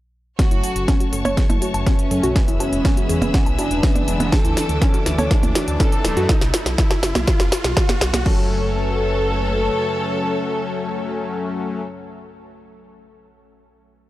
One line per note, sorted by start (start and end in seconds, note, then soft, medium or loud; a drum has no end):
0.39 6.34 F#2 medium
0.39 6.34 C#3 medium
0.39 0.73 F#3 medium
0.39 0.73 A3 medium
0.39 0.73 C#4 medium
0.39 1.03 F#4 loud
0.39 2.34 F#4 medium
0.39 0.49 F#4 medium
0.39 6.29 B4 medium
0.39 2.34 C#5 medium
0.39 2.34 A5 medium
0.39 2.34 C#6 medium
0.39 kick loud
0.39 snare soft
0.39 closed hi-hat medium
0.39 riser medium
0.51 0.61 F#1 medium
0.51 0.58 E4 medium
0.51 closed hi-hat medium
0.63 6.29 E5 medium
0.63 0.74 A5 medium
0.63 open hi-hat loud
0.76 0.86 F#1 medium
0.76 2.08 F#3 medium
0.76 2.08 A3 medium
0.76 2.08 C#4 medium
0.76 closed hi-hat medium
0.88 0.95 C#4 loud
0.88 kick loud
0.88 snare medium
0.88 closed hi-hat medium
0.88 low woodblock soft
1.00 1.07 F#4 medium
1.00 closed hi-hat medium
1.13 1.23 F#1 medium
1.13 1.20 A4 medium
1.13 open hi-hat loud
1.17 2.36 A5 medium
1.25 1.35 F#1 medium
1.25 1.35 C#5 loud
1.25 open hi-hat medium
1.25 percussion blips medium
1.37 1.48 G#4 medium
1.37 kick loud
1.37 snare medium
1.37 closed hi-hat medium
1.50 1.60 F#1 medium
1.50 1.57 E4 medium
1.50 closed hi-hat medium
1.50 percussion blips medium
1.62 1.72 F#4 medium
1.62 open hi-hat loud
1.74 1.84 F#1 medium
1.74 1.81 A5 medium
1.74 closed hi-hat medium
1.74 low woodblock soft
1.86 2.50 C#4 loud
1.86 1.93 C#4 medium
1.86 2.50 C#4 medium
1.86 kick loud
1.86 snare medium
1.86 closed hi-hat medium
1.99 closed hi-hat medium
2.11 2.21 F#2 loud
2.11 2.33 F#3 medium
2.11 2.33 A3 medium
2.11 2.33 C#4 loud
2.11 2.18 A4 medium
2.11 open hi-hat loud
2.23 2.34 B1 medium
2.23 2.34 F#4 loud
2.23 closed hi-hat medium
2.36 2.70 E3 medium
2.36 2.70 G#3 medium
2.36 2.70 B3 medium
2.36 4.30 G#4 medium
2.36 6.25 E5 medium
2.36 2.43 G#5 loud
2.36 4.30 B5 medium
2.36 6.25 E6 medium
2.36 kick loud
2.36 snare medium
2.36 closed hi-hat medium
2.48 2.58 E1 medium
2.48 2.55 E4 medium
2.48 6.29 G#5 medium
2.48 closed hi-hat medium
2.60 3.49 C#4 loud
2.60 2.71 F#4 medium
2.60 open hi-hat loud
2.60 low woodblock medium
2.73 2.83 E1 medium
2.73 4.05 E3 medium
2.73 4.05 G#3 medium
2.73 4.05 B3 medium
2.73 2.79 G#5 medium
2.73 closed hi-hat medium
2.85 2.92 C#4 loud
2.85 kick loud
2.85 snare medium
2.85 closed hi-hat medium
2.97 3.01 F#4 medium
2.97 closed hi-hat medium
3.09 3.20 E2 medium
3.09 3.16 G#4 medium
3.09 open hi-hat loud
3.22 3.32 E1 medium
3.22 open hi-hat medium
3.22 percussion blips medium
3.34 3.41 F#5 medium
3.34 kick loud
3.34 snare medium
3.34 closed hi-hat medium
3.46 3.57 B1 medium
3.46 3.53 E4 medium
3.46 open hi-hat medium
3.46 low woodblock soft
3.59 4.32 D4 medium
3.59 4.34 D4 loud
3.59 3.69 F#4 medium
3.59 open hi-hat loud
3.71 3.81 E1 medium
3.71 3.78 G#5 medium
3.71 closed hi-hat medium
3.83 3.90 C#4 loud
3.83 kick loud
3.83 snare medium
3.83 closed hi-hat medium
3.96 closed hi-hat medium
3.96 percussion blips medium
4.08 4.18 E1 medium
4.08 4.29 E3 medium
4.08 4.29 G#3 medium
4.08 4.29 B3 loud
4.08 open hi-hat loud
4.20 4.30 E1 medium
4.20 4.24 F#5 medium
4.20 closed hi-hat medium
4.20 percussion blips medium
4.32 4.66 E3 medium
4.32 4.66 A3 medium
4.32 4.66 D4 medium
4.32 4.43 F#4 medium
4.32 4.96 A4 loud
4.32 6.27 A4 medium
4.32 6.27 D6 medium
4.32 kick loud
4.32 snare medium
4.32 closed hi-hat medium
4.32 low woodblock medium
4.45 4.55 D2 medium
4.45 4.52 E4 medium
4.45 closed hi-hat medium
4.57 4.67 A5 medium
4.57 snare medium
4.57 open hi-hat loud
4.69 4.79 D2 medium
4.69 6.02 E3 medium
4.69 6.02 A3 medium
4.69 6.02 D4 medium
4.69 closed hi-hat medium
4.82 4.89 C#4 loud
4.82 kick loud
4.82 snare medium
4.82 closed hi-hat medium
4.94 5.01 F#4 medium
4.94 closed hi-hat medium
5.06 5.16 D2 medium
5.06 5.13 A4 medium
5.06 snare medium
5.06 open hi-hat loud
5.18 5.29 D2 medium
5.18 5.29 C#5 loud
5.18 open hi-hat medium
5.18 percussion blips medium
5.18 low woodblock medium
5.31 5.41 G#4 medium
5.31 kick loud
5.31 snare medium
5.31 closed hi-hat medium
5.43 5.53 D2 medium
5.43 5.50 E4 medium
5.43 closed hi-hat medium
5.43 percussion blips medium
5.55 5.66 F#4 medium
5.55 snare medium
5.55 open hi-hat loud
5.68 5.78 D2 medium
5.68 5.75 A5 medium
5.68 closed hi-hat medium
5.80 5.87 C#4 loud
5.80 6.29 A4 loud
5.80 kick loud
5.80 snare medium
5.80 closed hi-hat medium
5.92 closed hi-hat medium
6.05 6.15 D1 medium
6.05 6.26 E3 medium
6.05 6.26 A3 medium
6.05 6.26 D4 loud
6.05 6.11 A4 medium
6.05 snare medium
6.05 open hi-hat loud
6.05 low woodblock soft
6.17 6.27 F#2 medium
6.17 6.27 F#4 loud
6.17 closed hi-hat medium
6.29 kick loud
6.29 snare loud
6.29 closed hi-hat medium
6.41 6.52 B1 medium
6.41 snare medium
6.41 closed hi-hat medium
6.54 snare loud
6.54 open hi-hat loud
6.66 6.76 B1 medium
6.66 snare medium
6.66 closed hi-hat medium
6.78 kick loud
6.78 snare loud
6.78 closed hi-hat medium
6.91 snare medium
6.91 closed hi-hat medium
6.91 low woodblock medium
7.03 7.13 F#1 medium
7.03 snare loud
7.03 open hi-hat loud
7.15 7.25 B1 medium
7.15 snare medium
7.15 open hi-hat medium
7.15 percussion blips medium
7.27 kick loud
7.27 snare loud
7.27 closed hi-hat medium
7.40 7.50 F#1 medium
7.40 snare medium
7.40 open hi-hat medium
7.52 snare loud
7.52 open hi-hat loud
7.64 7.75 B1 medium
7.64 snare medium
7.64 closed hi-hat medium
7.77 kick loud
7.77 snare loud
7.77 closed hi-hat medium
7.77 low woodblock medium
7.89 snare loud
7.89 closed hi-hat medium
7.89 percussion blips medium
8.01 8.12 B1 medium
8.01 snare loud
8.01 open hi-hat loud
8.14 8.24 B1 medium
8.14 snare loud
8.14 closed hi-hat medium
8.14 percussion blips medium
8.26 9.69 F#1 medium
8.26 11.82 F#2 medium
8.26 11.82 C#3 medium
8.26 11.82 F#3 medium
8.26 11.82 A3 medium
8.26 11.82 C#4 loud
8.26 11.82 F#4 medium
8.26 8.49 F#4 loud
8.26 11.82 A4 loud
8.26 11.82 A4 medium
8.26 11.82 A4 loud
8.26 11.82 B4 medium
8.26 11.82 C#5 medium
8.26 kick loud
8.26 crash medium
8.33 11.89 E5 medium
8.41 11.96 A5 medium